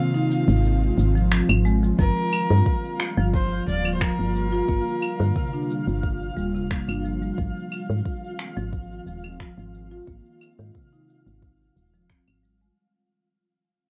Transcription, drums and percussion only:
0.15 shaker
0.31 shaker
0.49 shaker
0.65 shaker
0.83 shaker
0.99 shaker
1.17 shaker
1.32 finger snap, shaker
1.49 claves, shaker
1.66 shaker
1.84 shaker
1.99 kick, shaker
2.18 shaker
2.33 claves, shaker
2.51 shaker
2.66 kick, shaker
2.85 shaker
3.00 finger snap, shaker
3.19 shaker
3.34 kick, shaker
3.52 shaker
3.68 shaker
3.85 claves, shaker
4.01 finger snap, kick, shaker
4.20 shaker
4.36 shaker
4.53 shaker
4.68 kick, shaker
4.87 shaker
5.02 claves, shaker
5.21 shaker
5.36 kick, shaker
5.54 shaker
5.70 shaker
5.88 shaker
6.03 kick, shaker
6.22 shaker
6.38 shaker
6.55 shaker
6.71 finger snap, kick, shaker
6.89 claves, shaker
7.05 shaker
7.23 shaker
7.38 kick, shaker
7.57 shaker
7.72 claves, shaker
7.90 shaker
8.05 kick, shaker
8.24 shaker
8.39 finger snap, shaker
8.58 shaker
8.73 kick, shaker
8.91 shaker
9.07 shaker
9.24 claves, shaker
9.40 finger snap, kick, shaker
9.59 shaker
9.74 shaker
9.92 shaker
10.08 kick, shaker
10.26 shaker
10.41 claves, shaker
10.60 shaker
10.75 kick, shaker
10.94 shaker
11.10 shaker
11.27 shaker
11.42 kick, shaker
11.61 shaker
11.77 shaker
11.95 shaker
12.10 finger snap, kick, shaker
12.28 claves, shaker
12.44 shaker
12.62 shaker

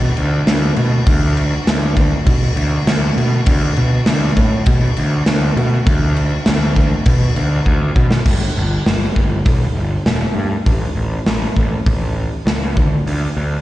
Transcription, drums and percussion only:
0.17 crash
0.47 snare, crash
0.76 crash
1.06 kick, crash
1.37 crash
1.67 snare, crash
1.97 kick, crash
2.26 kick, crash
2.57 crash
2.87 snare, crash
3.18 crash
3.46 kick, crash
3.76 crash
4.06 snare, crash
4.37 kick, crash
4.66 kick, crash
4.97 crash
5.26 snare, crash
5.57 crash
5.87 kick, crash
6.16 crash
6.46 snare, crash
6.76 kick, crash
7.05 kick, crash
7.36 crash
7.66 kick
7.96 kick
8.11 snare
8.26 kick, crash
8.86 snare, open hi-hat
9.16 kick
9.45 kick, open hi-hat
10.06 snare, open hi-hat
10.66 kick, open hi-hat
11.26 snare, open hi-hat
11.56 kick
11.86 kick, open hi-hat
12.47 snare, open hi-hat
12.77 kick
13.07 open hi-hat

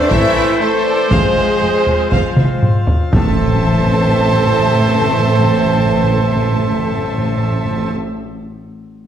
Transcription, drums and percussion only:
0.11 taiko
1.11 taiko
1.86 taiko low
2.12 taiko
2.37 taiko mid
2.63 taiko low-mid
2.87 taiko low
3.13 taiko

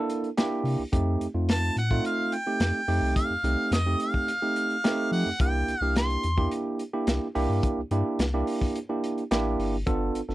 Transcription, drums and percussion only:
0.10 closed hi-hat
0.24 closed hi-hat
0.37 snare, closed hi-hat
0.65 open hi-hat
0.93 kick, closed hi-hat
1.21 closed hi-hat
1.49 snare, closed hi-hat
1.63 closed hi-hat
1.77 closed hi-hat
1.91 kick
2.05 closed hi-hat
2.32 closed hi-hat
2.60 snare, closed hi-hat
2.88 open hi-hat
3.16 kick, closed hi-hat
3.44 closed hi-hat
3.72 snare, closed hi-hat
4.00 closed hi-hat
4.14 kick
4.28 closed hi-hat
4.56 closed hi-hat
4.70 closed hi-hat
4.84 snare, closed hi-hat
5.13 open hi-hat
5.40 kick, closed hi-hat
5.68 closed hi-hat
5.96 snare, closed hi-hat
6.10 closed hi-hat
6.23 closed hi-hat
6.38 kick
6.51 closed hi-hat
6.79 closed hi-hat
7.07 snare, closed hi-hat
7.35 open hi-hat
7.63 kick, closed hi-hat
7.91 closed hi-hat
8.19 snare, closed hi-hat
8.47 open hi-hat
8.61 kick, snare
8.76 closed hi-hat
9.04 closed hi-hat
9.18 closed hi-hat
9.31 snare, closed hi-hat
9.60 open hi-hat
9.87 kick, closed hi-hat
10.15 closed hi-hat
10.30 snare

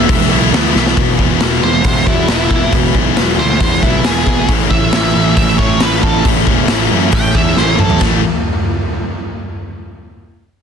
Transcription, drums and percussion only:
0.09 kick, open hi-hat
0.21 snare
0.54 snare, open hi-hat
0.76 snare
0.86 snare
0.97 kick, open hi-hat
1.19 kick
1.40 snare, open hi-hat
1.84 kick, open hi-hat
2.07 kick
2.28 snare, open hi-hat
2.51 kick
2.73 kick, open hi-hat
2.95 kick
3.17 snare, open hi-hat
3.60 kick, open hi-hat
3.83 kick
4.04 snare, open hi-hat
4.27 kick
4.49 kick, open hi-hat
4.71 kick
4.93 snare, open hi-hat
5.37 kick, open hi-hat
5.59 kick
5.80 snare, open hi-hat
6.03 kick
6.25 kick, open hi-hat
6.47 kick
6.68 snare, open hi-hat
7.12 kick, open hi-hat
7.35 kick
7.57 snare
7.79 mid tom
7.90 floor tom
8.01 kick, snare, splash

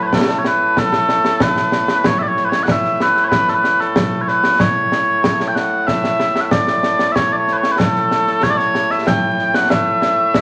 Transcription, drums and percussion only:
0.13 concert bass drum, snare
0.29 snare
0.45 snare
0.77 concert bass drum, snare
0.93 snare
1.09 snare
1.25 snare
1.40 concert bass drum, snare
1.56 snare
1.72 snare
1.88 snare
2.04 concert bass drum, snare
2.37 snare
2.52 snare
2.68 concert bass drum, snare
2.84 snare
3.00 snare
3.17 snare
3.32 concert bass drum, snare
3.48 snare
3.64 snare
3.80 snare
3.96 concert bass drum, snare
4.28 snare
4.44 snare
4.60 concert bass drum, snare
4.92 snare
5.24 concert bass drum, snare
5.40 snare
5.56 snare
5.88 concert bass drum, snare
6.04 snare
6.20 snare
6.36 snare
6.51 concert bass drum, snare
6.67 snare
6.83 snare
6.99 snare
7.16 concert bass drum, snare
7.47 snare
7.63 snare
7.80 concert bass drum, snare
7.95 snare
8.11 snare
8.27 snare
8.43 concert bass drum, snare
8.59 snare
8.75 snare
8.91 snare
9.07 concert bass drum, snare
9.39 snare
9.54 snare
9.70 concert bass drum, snare
10.02 snare
10.34 concert bass drum, snare

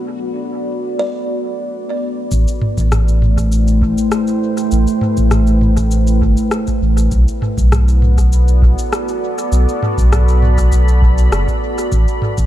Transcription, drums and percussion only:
2.31 kick, cabasa
2.48 cabasa
2.62 mid tom
2.78 kick, cabasa
2.92 cross-stick, mid tom, cabasa
3.08 cabasa
3.22 mid tom
3.38 kick, cabasa
3.52 cabasa
3.68 cabasa
3.82 kick
3.98 cabasa
4.12 cross-stick, cabasa
4.27 cabasa
4.57 cabasa
4.71 cabasa
4.87 cabasa
5.01 mid tom
5.17 kick, cabasa
5.31 cross-stick, mid tom, cabasa
5.47 cabasa
5.61 mid tom
5.77 kick, cabasa
5.91 cabasa
6.07 cabasa
6.22 kick
6.37 cabasa
6.51 cross-stick, cabasa
6.67 kick, cabasa
6.97 cabasa
7.12 kick, cabasa
7.28 cabasa
7.42 mid tom
7.58 kick, cabasa
7.72 cross-stick, mid tom, cabasa
7.88 cabasa
8.02 mid tom
8.18 kick, cabasa
8.32 cabasa
8.48 cabasa
8.62 kick
8.78 cabasa
8.93 cross-stick, cabasa
9.08 cabasa
9.38 cabasa
9.52 cabasa
9.69 cabasa
9.82 mid tom
9.98 kick, cabasa
10.13 cross-stick, mid tom, cabasa
10.28 cabasa
10.42 mid tom
10.58 kick, cabasa
10.72 cabasa
10.88 cabasa
11.02 kick
11.18 cabasa
11.32 cross-stick, cabasa
11.48 kick, cabasa
11.78 cabasa
11.92 kick, cabasa
12.08 cabasa
12.22 mid tom
12.38 kick, cabasa

